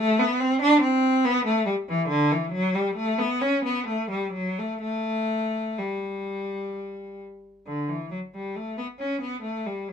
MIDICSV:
0, 0, Header, 1, 2, 480
1, 0, Start_track
1, 0, Key_signature, 1, "major"
1, 0, Tempo, 848656
1, 1183, Time_signature, 3, 2, 24, 8
1, 1666, Tempo, 910470
1, 2146, Tempo, 952381
1, 4066, Tempo, 892857
1, 5281, End_track
2, 0, Start_track
2, 0, Title_t, "Cello"
2, 0, Program_c, 0, 42
2, 0, Note_on_c, 0, 57, 109
2, 102, Note_off_c, 0, 57, 0
2, 109, Note_on_c, 0, 59, 95
2, 227, Note_off_c, 0, 59, 0
2, 228, Note_on_c, 0, 60, 96
2, 346, Note_off_c, 0, 60, 0
2, 350, Note_on_c, 0, 62, 106
2, 462, Note_on_c, 0, 60, 99
2, 465, Note_off_c, 0, 62, 0
2, 699, Note_off_c, 0, 60, 0
2, 705, Note_on_c, 0, 59, 104
2, 826, Note_off_c, 0, 59, 0
2, 826, Note_on_c, 0, 57, 96
2, 939, Note_on_c, 0, 55, 80
2, 943, Note_off_c, 0, 57, 0
2, 984, Note_off_c, 0, 55, 0
2, 1068, Note_on_c, 0, 52, 88
2, 1180, Note_on_c, 0, 50, 98
2, 1182, Note_off_c, 0, 52, 0
2, 1297, Note_off_c, 0, 50, 0
2, 1310, Note_on_c, 0, 52, 77
2, 1425, Note_off_c, 0, 52, 0
2, 1425, Note_on_c, 0, 54, 91
2, 1542, Note_off_c, 0, 54, 0
2, 1554, Note_on_c, 0, 55, 80
2, 1672, Note_off_c, 0, 55, 0
2, 1673, Note_on_c, 0, 57, 93
2, 1784, Note_off_c, 0, 57, 0
2, 1793, Note_on_c, 0, 59, 83
2, 1907, Note_off_c, 0, 59, 0
2, 1912, Note_on_c, 0, 61, 82
2, 2028, Note_off_c, 0, 61, 0
2, 2037, Note_on_c, 0, 59, 80
2, 2150, Note_off_c, 0, 59, 0
2, 2153, Note_on_c, 0, 57, 79
2, 2266, Note_off_c, 0, 57, 0
2, 2271, Note_on_c, 0, 55, 72
2, 2384, Note_off_c, 0, 55, 0
2, 2384, Note_on_c, 0, 54, 73
2, 2501, Note_off_c, 0, 54, 0
2, 2513, Note_on_c, 0, 57, 72
2, 2623, Note_off_c, 0, 57, 0
2, 2629, Note_on_c, 0, 57, 87
2, 3103, Note_off_c, 0, 57, 0
2, 3117, Note_on_c, 0, 55, 65
2, 3834, Note_off_c, 0, 55, 0
2, 4066, Note_on_c, 0, 50, 61
2, 4177, Note_off_c, 0, 50, 0
2, 4185, Note_on_c, 0, 52, 54
2, 4304, Note_on_c, 0, 54, 60
2, 4306, Note_off_c, 0, 52, 0
2, 4347, Note_off_c, 0, 54, 0
2, 4430, Note_on_c, 0, 55, 52
2, 4547, Note_off_c, 0, 55, 0
2, 4548, Note_on_c, 0, 57, 58
2, 4665, Note_on_c, 0, 59, 59
2, 4668, Note_off_c, 0, 57, 0
2, 4708, Note_off_c, 0, 59, 0
2, 4778, Note_on_c, 0, 61, 56
2, 4898, Note_on_c, 0, 59, 64
2, 4899, Note_off_c, 0, 61, 0
2, 5007, Note_on_c, 0, 57, 65
2, 5018, Note_off_c, 0, 59, 0
2, 5132, Note_off_c, 0, 57, 0
2, 5138, Note_on_c, 0, 55, 56
2, 5258, Note_on_c, 0, 54, 53
2, 5262, Note_off_c, 0, 55, 0
2, 5281, Note_off_c, 0, 54, 0
2, 5281, End_track
0, 0, End_of_file